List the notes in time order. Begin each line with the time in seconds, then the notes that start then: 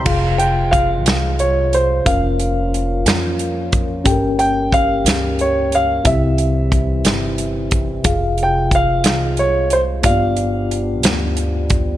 Already playing: C6
0.04 F1 C3 F3 G#3 F4 G#4 F5, kick, crash
0.38 G5, closed hi-hat
0.71 F5, kick, closed hi-hat
1.05 C2, snare, closed hi-hat
1.39 C#5, closed hi-hat
1.73 C5, closed hi-hat
2.05 F1 A#3 C#4 F4 A#4 F5, kick, closed hi-hat
2.40 closed hi-hat
2.74 closed hi-hat
3.06 F2, snare, closed hi-hat
3.39 closed hi-hat
3.73 kick, closed hi-hat
4.04 G1 G2 G3 C#4 G4 A4 G5, kick, closed hi-hat
4.12 A#4
4.39 G5, closed hi-hat
4.72 F5, kick, closed hi-hat
5.05 C#2, snare, closed hi-hat
5.39 C#5, closed hi-hat
5.72 F5, closed hi-hat
6.04 C2 C3 E3 C4 E4 G4 E5, kick, closed hi-hat
6.38 closed hi-hat
6.72 kick, closed hi-hat
7.05 G1, snare, closed hi-hat
7.38 closed hi-hat
7.71 kick, closed hi-hat
8.04 F1 C3 F3 G#3 F4 G#4 F5, kick, closed hi-hat
8.38 closed hi-hat
8.43 G5
8.71 F5, kick, closed hi-hat
9.04 C2, snare, closed hi-hat
9.37 C#5, closed hi-hat
9.70 C5, closed hi-hat
10.03 G1 G2 G3 A#3 B3 D4 F4 G4 D5 F5, kick, closed hi-hat
10.09 B3
10.37 closed hi-hat
10.71 closed hi-hat
11.03 D2, snare, closed hi-hat
11.37 closed hi-hat
11.70 kick, closed hi-hat